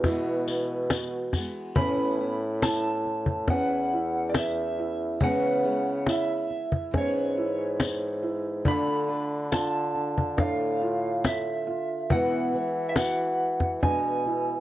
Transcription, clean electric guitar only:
1.76 2.63 B5 loud
2.63 3.50 A5 medium
3.50 4.31 F#5 loud
4.30 4.36 D5 medium
4.36 5.24 E5 medium
5.24 6.11 F#5 medium
6.10 6.97 E5 medium
6.98 8.21 C#5 medium
8.68 9.53 B5 loud
9.54 10.39 A5 medium
10.40 11.25 F5 medium
11.26 12.12 E5 medium
12.12 12.89 F#5 medium
12.89 12.97 E5 medium
12.97 13.79 F#5 medium
13.83 14.60 G#5 medium

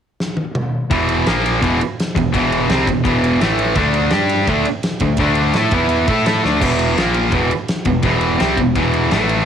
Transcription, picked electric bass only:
0.90 1.24 E1 medium
1.28 1.61 A#1 medium
1.63 1.79 E1 medium
2.17 2.33 E1 medium
2.34 2.67 E1 loud
2.69 2.86 C2 medium
2.87 3.04 E1 medium
3.05 3.38 E1 medium
3.41 3.74 A1 medium
3.76 4.09 D2 medium
4.13 4.46 G2 medium
4.48 4.65 D2 medium
5.01 5.18 D2 medium
5.18 5.52 D2 loud
5.54 5.71 A2 medium
5.72 6.06 E2 medium
6.08 6.25 A2 medium
6.27 6.43 A2 loud
6.45 6.61 D2 loud
6.62 6.95 E1 medium
6.98 7.31 A#1 medium
7.33 7.50 E1 loud
7.86 8.03 E1 medium
8.03 8.38 E1 medium
8.41 8.57 C2 medium
8.57 8.75 E1 medium
8.75 9.10 E1 medium
9.11 9.45 A1 loud

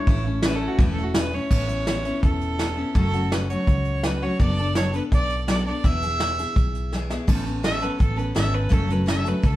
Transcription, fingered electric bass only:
0.07 0.67 A1 medium
0.79 1.38 E1 medium
1.51 2.10 A1 medium
2.23 2.82 E1 medium
2.95 3.55 F#1 medium
3.68 4.27 C#2 medium
4.40 4.99 F#1 medium
5.12 5.72 B1 medium
5.85 6.44 E1 medium
6.57 7.16 B1 medium
7.28 7.88 A1 medium
8.01 8.31 A1 medium
8.36 8.67 G#1 medium
8.72 9.31 F#1 medium
9.44 9.56 C#2 medium

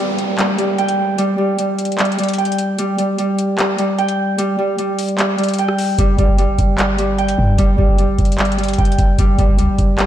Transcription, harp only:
0.00 0.37 G3 medium
0.00 0.74 G5 loud
0.38 0.57 G3 medium
0.59 1.17 G3 medium
0.78 2.34 G5 loud
1.18 1.37 G3 loud
1.38 1.58 G3 medium
1.59 1.98 G3 medium
1.99 2.18 G3 medium
2.19 2.78 G3 medium
2.38 3.93 G5 medium
2.79 2.98 G3 medium
2.99 3.18 G3 medium
3.19 3.57 G3 medium
3.58 3.77 G3 medium
3.78 4.37 G3 medium
3.98 5.54 G5 medium
4.38 4.57 G3 medium
4.59 4.77 G3 medium
4.78 5.17 G3 medium
5.18 5.37 G3 medium
5.38 5.97 G3 medium
5.59 7.14 G5 medium
5.98 6.17 G3 loud
6.18 6.37 G3 medium
6.38 6.77 G3 medium
6.78 6.97 G3 medium
6.99 7.57 G3 medium
7.18 8.74 G5 loud
7.58 7.77 G3 loud
7.78 7.98 G3 medium
7.99 8.38 G3 medium
8.39 8.58 G3 medium
8.59 9.18 G3 medium
8.78 10.06 G5 medium
9.19 9.38 G3 medium
9.39 9.58 G3 medium
9.59 9.97 G3 medium
9.98 10.06 G3 medium

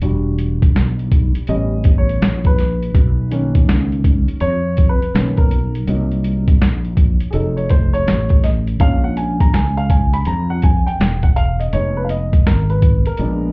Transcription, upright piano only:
0.02 1.44 G3 medium
0.02 1.44 D4 medium
0.02 1.45 F#4 medium
1.48 2.54 G3 medium
1.48 2.54 B3 soft
1.48 2.55 C#4 medium
1.48 1.94 D#5 loud
1.98 2.48 C#5 medium
2.47 3.52 B4 medium
3.31 4.37 D#3 medium
3.31 4.37 A#3 medium
3.31 4.37 C#4 medium
4.41 4.86 C#5 loud
4.89 5.35 B4 medium
5.14 5.47 D#3 soft
5.14 5.47 A#3 soft
5.14 5.48 C#4 medium
5.37 6.44 A#4 medium
5.37 5.39 B4 medium
5.87 7.30 F#3 medium
5.87 7.30 A#3 soft
5.87 7.30 D#4 medium
7.31 8.76 F#3 medium
7.31 8.76 A3 medium
7.31 8.76 D#4 medium
7.31 7.34 G#4 medium
7.31 7.58 A4 medium
7.57 7.71 C#5 medium
7.70 7.92 C5 medium
7.93 8.40 C#5 loud
8.44 8.52 D#5 medium
8.80 11.69 F3 medium
8.80 11.69 G#3 soft
8.80 11.69 C#4 medium
8.80 9.05 F5 loud
9.04 9.17 F#5 medium
9.17 9.39 G#5 medium
9.41 9.54 A#5 medium
9.54 9.78 G#5 medium
9.77 9.91 F5 medium
9.90 10.14 G#5 medium
10.13 10.27 B5 loud
10.27 10.51 A#5 loud
10.50 10.62 F#5 medium
10.64 10.88 G#5 loud
10.87 11.24 G5 medium
11.23 11.28 F#5 medium
11.36 11.58 F5 medium
11.60 11.73 D#5 medium
11.72 13.15 G#3 medium
11.72 13.15 B3 medium
11.72 13.16 D#4 medium
11.72 11.97 C#5 medium
11.97 12.05 B4 medium
12.04 12.10 F5 medium
12.10 12.47 D#5 medium
12.47 12.70 A#4 medium
12.70 13.07 B4 medium
13.07 13.52 A#4 medium
13.19 13.52 G#3 medium
13.19 13.52 B3 medium
13.19 13.52 D4 medium

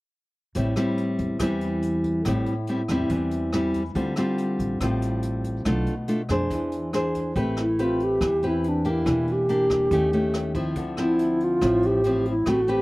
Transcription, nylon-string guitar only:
0.56 1.39 A2 soft
0.56 0.73 G3 soft
0.56 0.74 C4 soft
0.56 0.74 E4 soft
0.76 1.37 G3 soft
0.76 1.37 C4 medium
0.76 1.37 E4 medium
1.40 2.23 E3 soft
1.40 2.22 G3 soft
1.40 2.22 C4 soft
1.40 2.22 E4 medium
2.25 3.08 A2 soft
2.25 2.53 G3 soft
2.25 2.53 C4 soft
2.25 2.53 E4 medium
2.69 2.81 G3 soft
2.69 2.81 C4 soft
2.69 2.81 E4 soft
2.91 3.50 G3 medium
2.91 3.50 C4 medium
2.91 3.51 E4 medium
3.11 3.94 E3 soft
3.54 3.82 G3 soft
3.54 3.82 C4 soft
3.54 3.82 E4 medium
3.95 4.78 D3 soft
3.95 4.13 G3 soft
3.95 4.13 C4 medium
3.95 4.13 F4 medium
4.18 4.78 G3 medium
4.18 4.78 C4 medium
4.18 4.78 F4 medium
4.81 5.64 A2 soft
4.81 5.63 G3 soft
4.81 5.63 C4 soft
4.81 5.63 F4 medium
5.66 6.49 B2 soft
5.66 5.93 A3 soft
5.66 5.93 D4 soft
5.66 5.94 F4 medium
6.08 6.21 A3 soft
6.08 6.21 D4 soft
6.08 6.21 F4 medium
6.30 6.90 D4 medium
6.30 6.90 G#4 medium
6.30 6.91 C5 medium
6.51 7.34 E3 soft
6.94 7.34 D4 soft
6.94 7.35 G#4 soft
6.94 7.35 C5 medium
7.36 8.19 A3 soft
7.36 7.63 C4 soft
7.36 7.63 G4 soft
7.36 7.63 B4 medium
7.79 8.21 C4 soft
7.79 8.21 G4 medium
7.79 8.21 B4 medium
8.21 9.04 E3 medium
8.43 8.82 C4 soft
8.43 8.82 G4 medium
8.43 8.82 B4 medium
8.85 9.45 A#3 medium
8.85 9.45 D4 medium
8.85 9.46 G4 medium
9.06 9.89 E3 soft
9.49 9.90 A#3 medium
9.49 9.90 D4 medium
9.49 9.90 G4 medium
9.92 10.75 D#3 medium
9.92 10.09 A3 medium
9.92 10.10 C#4 medium
9.92 10.10 G4 medium
10.13 10.52 A3 soft
10.13 10.52 C#4 soft
10.13 10.52 G4 medium
10.55 10.97 F3 medium
10.55 10.97 C4 soft
10.55 10.98 E4 medium
10.77 11.60 D3 medium
10.98 11.58 F3 medium
10.98 11.58 C4 medium
10.98 11.59 E4 medium
11.61 12.44 A2 medium
11.61 12.01 F3 medium
11.61 12.01 C4 medium
11.61 12.01 E4 medium
12.06 12.32 F3 medium
12.06 12.33 C4 soft
12.06 12.33 E4 medium
12.47 12.82 A3 soft
12.47 12.59 C4 soft
12.47 12.60 G4 soft
12.47 12.60 B4 medium
12.68 12.82 C4 medium
12.68 12.82 G4 medium
12.68 12.82 B4 medium

